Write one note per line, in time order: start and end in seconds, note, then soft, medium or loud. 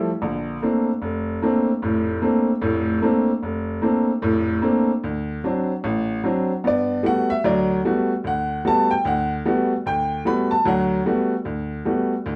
0.21 0.56 A#1 medium
0.21 0.56 D3 medium
0.62 0.89 A3 soft
0.62 0.89 A#3 soft
0.62 0.89 C4 soft
0.62 0.89 D4 medium
1.02 1.36 F1 medium
1.42 1.69 A3 medium
1.42 1.69 A#3 soft
1.42 1.69 C4 medium
1.42 1.69 D4 medium
1.82 2.17 F1 medium
1.82 2.17 A2 medium
2.22 2.49 A3 medium
2.22 2.49 A#3 soft
2.22 2.49 C4 soft
2.22 2.50 D4 medium
2.61 2.96 F1 medium
2.61 2.96 A2 medium
3.02 3.29 A3 medium
3.02 3.29 A#3 medium
3.02 3.29 C4 medium
3.02 3.30 D4 medium
3.43 3.77 F1 medium
3.82 4.09 A3 medium
3.82 4.09 A#3 soft
3.82 4.10 C4 soft
3.82 4.10 D4 medium
4.22 4.57 F1 medium
4.22 4.57 A2 medium
4.62 4.89 A3 medium
4.62 4.89 A#3 medium
4.62 4.90 C4 medium
4.62 4.90 D4 medium
5.04 5.38 D2 medium
5.44 5.70 F#3 soft
5.44 5.71 C4 soft
5.44 5.71 D4 medium
5.84 6.18 A1 medium
6.24 6.50 F#3 medium
6.24 6.51 C4 soft
6.24 6.51 D4 medium
6.64 6.98 G2 medium
6.64 6.98 B3 medium
6.64 7.03 D5 medium
7.03 7.30 G3 soft
7.03 7.30 A3 soft
7.03 7.31 B3 soft
7.03 7.31 F#4 medium
7.03 7.30 F#5 medium
7.30 7.43 E5 medium
7.44 7.78 D2 medium
7.44 7.78 F#3 medium
7.44 7.69 D5 medium
7.85 8.11 G3 medium
7.85 8.11 A3 soft
7.85 8.11 B3 soft
7.85 8.11 F#4 medium
8.24 8.58 D2 medium
8.24 8.63 F#5 medium
8.65 8.91 G3 medium
8.65 8.91 A3 soft
8.65 8.91 B3 soft
8.65 8.92 F#4 medium
8.65 8.90 A5 medium
8.91 9.04 G5 medium
9.05 9.39 D2 medium
9.05 9.30 F#5 medium
9.45 9.72 G3 medium
9.45 9.72 A3 soft
9.45 9.72 B3 medium
9.45 9.72 F#4 medium
9.86 10.20 D2 medium
9.86 10.23 G5 medium
10.25 10.52 G3 soft
10.25 10.52 A3 soft
10.25 10.52 B3 soft
10.25 10.52 F#4 medium
10.25 10.50 B5 medium
10.51 10.64 A5 medium
10.65 11.00 D2 medium
10.65 10.99 F#3 medium
10.65 10.82 F#5 medium
11.06 11.32 G3 medium
11.06 11.32 A3 medium
11.06 11.32 B3 medium
11.06 11.33 F#4 medium
11.45 11.79 D2 medium
11.85 12.12 G3 soft
11.85 12.12 A3 soft
11.85 12.12 B3 soft
11.85 12.12 F#4 soft
12.26 12.36 D2 medium